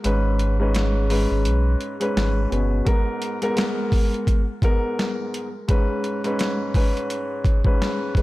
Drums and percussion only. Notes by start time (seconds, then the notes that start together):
0.04 closed hi-hat
0.39 closed hi-hat
0.75 snare, closed hi-hat
1.10 open hi-hat
1.45 closed hi-hat
1.81 closed hi-hat
2.01 closed hi-hat
2.17 snare, closed hi-hat
2.52 closed hi-hat
2.87 kick, closed hi-hat
3.22 closed hi-hat
3.42 closed hi-hat
3.57 snare, closed hi-hat
3.92 kick, open hi-hat
4.14 closed hi-hat
4.27 kick, closed hi-hat
4.62 kick, closed hi-hat
4.99 snare, closed hi-hat
5.34 closed hi-hat
5.69 kick, closed hi-hat
6.04 closed hi-hat
6.24 closed hi-hat
6.39 snare, closed hi-hat
6.74 kick, open hi-hat
6.97 closed hi-hat
7.10 closed hi-hat
7.44 kick, closed hi-hat
7.64 kick
7.82 snare, closed hi-hat
8.15 kick, closed hi-hat